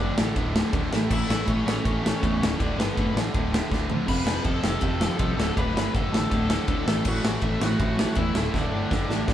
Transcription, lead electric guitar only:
Already playing: D4 D5
1.13 E4 E5
1.48 C#4 C#5
1.67 C#4 C#5
2.60 D4 D5
2.78 B3 B4
4.09 B4 B5
4.45 A4 A5
4.65 A4 A5
5.57 B4 B5
5.95 A4 A5
6.13 A4 A5
7.08 F#4 F#5
7.42 E4 E5
7.63 F#4 F#5
8.17 E4 E5
8.38 E4 E5
8.56 D4 D5

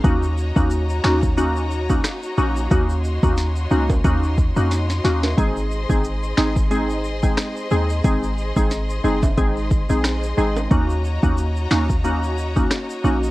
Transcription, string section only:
0.04 F#4 C#5 D#5 A#5
2.71 C6
5.38 G#4 C5
10.71 F#4 C#5 A#5

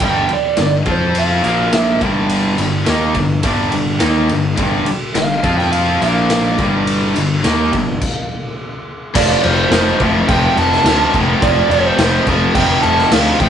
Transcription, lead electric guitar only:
0.04 G5
0.33 D5
0.63 D5
0.91 C5
1.18 F5
1.73 E5
5.18 F5
5.58 G5
5.72 F5
6.03 F5
9.16 D5
9.44 C5
10.29 G5
10.58 A5
11.43 D5
11.72 C5
12.55 G5
12.82 A5
13.13 F5
13.40 G5

